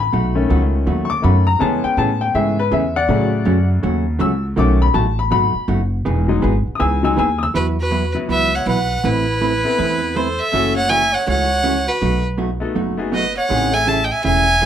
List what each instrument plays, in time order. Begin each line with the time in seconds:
Already playing: upright bass A1
0.00 upright piano B5
0.13 upright bass B1, hollow-body jazz guitar B2 F#3 A3 D#4 F#4
0.35 upright piano D#3 A3 C#4
0.50 upright bass C#2, hollow-body jazz guitar B2 F#3 A3 D#4 F#4
0.87 upright bass D#2, hollow-body jazz guitar B2 F#3 A3 D#4 F#4
1.05 upright piano C#6
1.10 upright piano D6
1.22 upright bass F#2, hollow-body jazz guitar B2 F#3 A3 D#4 F#4, upright piano D#3 A3 C#4 B5
1.47 upright piano A#5
1.59 upright bass E2, hollow-body jazz guitar C#3 E3 A3 C#4 G#4, upright piano G#3 B3 C#4 A5
1.84 upright piano G5, muted upright bass stroke
1.97 upright bass A2, hollow-body jazz guitar C#3 E3 A3 C#4 G#4, upright piano A5
2.21 upright piano G5
2.35 upright bass G#2, hollow-body jazz guitar C#3 E3 A3 C#4 G#4, upright piano E5
2.59 upright piano B4
2.71 upright bass E2, hollow-body jazz guitar C#3 E3 A3 C#4 G#4, upright piano E5
2.96 upright piano D5 F#5
3.09 upright bass A2, hollow-body jazz guitar C#3 F#3 A3 C#4 F#4, upright piano C#3 F#3 A3
3.45 upright bass F#2, hollow-body jazz guitar C#3 F#3 A3 C#4 F#4
3.83 upright bass D#2, hollow-body jazz guitar C#3 F#3 A3 C#4 F#4
4.19 upright bass C#2, hollow-body jazz guitar C#3 F#3 A3 C#4 F#4, upright piano E6
4.56 upright bass B1, hollow-body jazz guitar B2 F#3 A3 D#4 F#4, upright piano D#3 A3 C#4 D6
4.82 upright piano B5
4.94 upright bass A1, hollow-body jazz guitar B2 F#3 A3 D#4 F#4, upright piano A5
5.19 upright piano B5
5.31 upright bass G#1, hollow-body jazz guitar B2 F#3 A3 D#4 F#4, upright piano B5
5.54 muted upright bass stroke
5.68 upright bass F#1, hollow-body jazz guitar B2 F#3 A3 D#4 F#4
6.05 upright bass E1, hollow-body jazz guitar E3 B3 D#4 G#4
6.28 upright piano F#3 G#3 D#4
6.42 upright bass G#1, hollow-body jazz guitar E3 B3 D#4 G#4
6.67 muted upright bass stroke
6.75 upright piano D#6
6.79 upright bass C#2, hollow-body jazz guitar E3 B3 D#4 G#4, upright piano G#5 E6
7.03 upright piano F#3 G#3 D#4 G#5 E6
7.16 upright bass D#2, hollow-body jazz guitar E3 B3 D#4 G#4, upright piano G#5 E6
7.39 upright piano D#6
7.43 upright piano E6
7.54 upright bass E2, hollow-body jazz guitar E3 F#3 B3 E4 B4, clarinet F#4, fiddle B4
7.79 clarinet F#4, fiddle B4
7.91 hollow-body jazz guitar E3 F#3 B3 E4 B4
8.14 upright piano F#3 B3 E4 F#4 B4
8.28 upright bass C#2, hollow-body jazz guitar E3 F#3 B3 E4 B4, clarinet B4, fiddle E5
8.55 clarinet C#5, fiddle F#5
8.66 upright bass B1, hollow-body jazz guitar E3 F#3 B3 E4 B4, clarinet B4, fiddle F#5
9.04 upright bass A1, hollow-body jazz guitar E3 A3 C4 E4 B4, clarinet E4, fiddle B4
9.41 hollow-body jazz guitar E3 A3 C4 E4 B4
9.64 upright piano B3 C4 E4 A4 B4
9.79 upright bass E2, hollow-body jazz guitar E3 A3 C4 E4 B4
10.16 hollow-body jazz guitar E3 A3 C4 E4 B4, clarinet A4, fiddle C5
10.39 clarinet A4, fiddle E5
10.52 upright bass F#1, hollow-body jazz guitar C#3 E3 A3 C#4 F#4, upright piano A3 C#4 E4 F#4 A4
10.76 clarinet C#5, fiddle F#5
10.89 hollow-body jazz guitar C#3 E3 A3 C#4 F#4, clarinet E5, fiddle G#5
11.13 clarinet C#5, fiddle F#5
11.27 upright bass C#2, hollow-body jazz guitar C#3 E3 A3 C#4 F#4, clarinet C#5, fiddle F#5
11.63 hollow-body jazz guitar C#3 E3 A3 C#4 F#4
11.88 clarinet F#4, fiddle B4
12.02 upright bass B1, hollow-body jazz guitar B2 F#3 A3 D#4 F#4
12.38 hollow-body jazz guitar B2 F#3 A3 D#4 F#4
12.60 upright piano A3 B3 D#4 F#4 A4
12.75 upright bass F#1, hollow-body jazz guitar B2 F#3 A3 D#4 F#4
12.97 upright piano A3 B3 D#4 F#4 G#4
13.12 hollow-body jazz guitar B2 F#3 A3 D#4 F#4, clarinet B4, fiddle D#5
13.37 clarinet C#5, fiddle F#5
13.49 upright bass A1, hollow-body jazz guitar C#3 E3 A3 C#4 G#4, upright piano G#3 C4 D#4 G4 G#4
13.72 upright piano A3 C#4 E4 G#4 A4, clarinet E5, fiddle G#5
13.87 hollow-body jazz guitar C#3 E3 A3 C#4 G#4, clarinet E5, fiddle A5
14.04 clarinet D#5, fiddle G5
14.11 clarinet E5, fiddle G#5
14.23 upright bass E1, hollow-body jazz guitar C#3 E3 A3 C#4 G#4, clarinet E5, fiddle G#5
14.62 hollow-body jazz guitar C#3 E3 A3 C#4